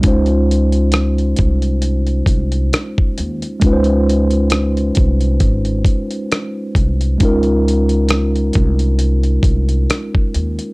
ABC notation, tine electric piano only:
X:1
M:4/4
L:1/8
Q:"Swing 16ths" 1/4=67
K:Db
V:1 name="Tine electric piano"
[A,DEFc]8 | [A,DEF_c=c]8 | [A,DEFB]8 |]